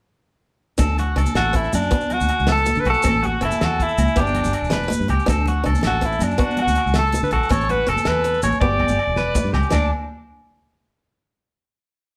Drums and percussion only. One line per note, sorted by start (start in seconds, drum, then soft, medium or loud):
0.78 kick medium
0.78 closed hi-hat medium
0.78 high conga medium
0.78 low agogo medium
0.78 maracas medium
0.98 closed hi-hat soft
0.98 low conga medium
1.17 closed hi-hat soft
1.17 low agogo medium
1.26 high conga medium
1.26 low conga soft
1.26 maracas medium
1.35 snare medium
1.35 closed hi-hat medium
1.35 low conga medium
1.35 low agogo medium
1.54 kick medium
1.54 closed hi-hat medium
1.64 low conga soft
1.64 maracas soft
1.73 closed hi-hat soft
1.73 high conga medium
1.73 low conga medium
1.73 low agogo medium
1.73 maracas medium
1.83 low conga soft
1.91 kick medium
1.91 closed hi-hat medium
2.01 low conga soft
2.01 maracas soft
2.10 closed hi-hat soft
2.10 low conga medium
2.10 low agogo medium
2.21 high conga medium
2.21 low conga soft
2.21 maracas medium
2.29 closed hi-hat medium
2.29 low conga soft
2.29 low agogo medium
2.39 low conga soft
2.39 maracas soft
2.47 snare medium
2.47 closed hi-hat medium
2.47 low conga medium
2.57 maracas soft
2.66 closed hi-hat soft
2.66 high conga medium
2.66 maracas medium
2.75 maracas soft
2.85 closed hi-hat soft
2.85 low agogo medium
2.94 maracas soft
3.03 kick medium
3.03 closed hi-hat medium
3.03 high conga medium
3.03 low agogo medium
3.03 maracas medium
3.23 closed hi-hat soft
3.23 low conga medium
3.42 closed hi-hat soft
3.42 low agogo medium
3.51 high conga medium
3.51 low conga soft
3.51 maracas medium
3.61 snare medium
3.61 closed hi-hat medium
3.61 low conga medium
3.61 low agogo medium
3.80 kick medium
3.80 closed hi-hat soft
3.89 low conga soft
3.89 maracas soft
3.98 closed hi-hat medium
3.98 high conga medium
3.98 low conga medium
3.98 low agogo medium
3.98 maracas medium
4.08 low conga soft
4.08 maracas soft
4.16 kick medium
4.16 closed hi-hat medium
4.27 low conga soft
4.27 maracas soft
4.35 closed hi-hat medium
4.35 low conga medium
4.35 low agogo medium
4.44 high conga medium
4.44 low conga soft
4.44 maracas medium
4.53 closed hi-hat medium
4.53 low conga soft
4.53 low agogo medium
4.63 low conga soft
4.63 maracas soft
4.71 snare medium
4.71 closed hi-hat medium
4.71 low conga medium
4.83 maracas soft
4.90 closed hi-hat soft
4.90 high conga medium
4.90 maracas medium
5.08 closed hi-hat soft
5.08 low conga medium
5.08 low agogo medium
5.19 maracas soft
5.26 kick medium
5.26 closed hi-hat medium
5.26 high conga medium
5.26 low agogo medium
5.26 maracas medium
5.46 closed hi-hat soft
5.46 low conga medium
5.66 closed hi-hat soft
5.66 low agogo medium
5.73 high conga medium
5.73 low conga soft
5.73 maracas medium
5.81 snare medium
5.81 closed hi-hat medium
5.81 low conga medium
5.81 low agogo medium
6.02 kick medium
6.02 closed hi-hat soft
6.11 low conga soft
6.11 maracas soft
6.19 closed hi-hat soft
6.19 high conga medium
6.19 low conga medium
6.19 low agogo medium
6.19 maracas medium
6.30 low conga soft
6.30 maracas soft
6.38 kick medium
6.38 closed hi-hat medium
6.50 maracas soft
6.57 closed hi-hat soft
6.57 low conga medium
6.57 low agogo medium
6.67 high conga medium
6.67 low conga soft
6.67 maracas medium
6.75 closed hi-hat soft
6.75 low conga soft
6.75 low agogo medium
6.86 low conga soft
6.86 maracas soft
6.94 snare medium
6.94 closed hi-hat medium
6.94 low conga medium
7.06 maracas soft
7.12 closed hi-hat soft
7.12 high conga medium
7.12 maracas medium
7.24 maracas soft
7.31 closed hi-hat soft
7.31 low conga medium
7.31 low agogo medium
7.43 maracas soft
7.49 kick medium
7.49 closed hi-hat medium
7.49 high conga medium
7.49 low agogo medium
7.49 maracas medium
7.61 maracas soft
7.69 closed hi-hat soft
7.69 low conga medium
7.78 low conga soft
7.88 closed hi-hat soft
7.88 low agogo medium
7.88 maracas soft
7.96 high conga medium
7.96 maracas medium
8.05 snare medium
8.05 closed hi-hat medium
8.05 low conga medium
8.05 low agogo medium
8.24 closed hi-hat medium
8.24 low conga soft
8.33 low conga soft
8.33 maracas soft
8.42 closed hi-hat soft
8.42 high conga medium
8.42 low conga medium
8.42 low agogo medium
8.42 maracas medium
8.52 low conga soft
8.52 maracas soft
8.61 kick medium
8.72 low conga soft
8.80 kick soft
8.80 low conga medium
8.80 low agogo medium
8.88 high conga medium
8.88 maracas medium
8.99 low agogo medium
9.16 snare medium
9.16 low conga medium
9.16 maracas soft
9.35 kick medium
9.35 high conga medium
9.35 maracas medium
9.45 low conga soft
9.53 snare medium
9.53 low conga medium
9.53 low agogo medium
9.62 maracas soft
9.71 snare medium
9.71 floor tom medium
9.71 high conga medium
9.71 low agogo medium
9.71 maracas medium